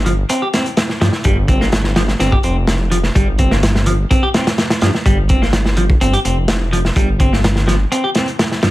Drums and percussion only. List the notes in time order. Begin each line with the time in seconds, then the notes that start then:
0.06 closed hi-hat
0.29 closed hi-hat
0.53 snare, closed hi-hat
0.66 closed hi-hat
0.77 snare, closed hi-hat
0.89 snare
1.01 snare, closed hi-hat
1.12 snare
1.24 kick, closed hi-hat
1.48 kick, closed hi-hat
1.61 snare
1.72 snare, closed hi-hat
1.84 snare
1.96 snare, closed hi-hat
2.08 snare
2.19 snare, closed hi-hat
2.32 kick
2.43 closed hi-hat
2.67 snare, closed hi-hat
2.92 closed hi-hat
3.03 snare
3.16 kick, closed hi-hat
3.38 kick, closed hi-hat
3.51 snare
3.63 snare, closed hi-hat
3.75 snare
3.86 closed hi-hat
4.11 kick, closed hi-hat
4.34 snare, closed hi-hat
4.47 snare, closed hi-hat
4.58 snare, closed hi-hat
4.70 snare, closed hi-hat
4.81 snare, closed hi-hat
4.95 snare
5.06 kick, closed hi-hat
5.29 kick, closed hi-hat
5.43 snare
5.53 snare, closed hi-hat
5.65 snare
5.77 closed hi-hat
5.90 kick
6.01 closed hi-hat
6.13 closed hi-hat
6.25 closed hi-hat
6.48 snare, closed hi-hat
6.73 closed hi-hat
6.85 snare
6.96 kick, closed hi-hat
7.20 kick, closed hi-hat
7.33 snare
7.44 snare, closed hi-hat
7.56 snare
7.68 snare, closed hi-hat
7.92 closed hi-hat
8.15 snare, closed hi-hat
8.28 closed hi-hat
8.39 snare, closed hi-hat
8.52 snare
8.63 snare, closed hi-hat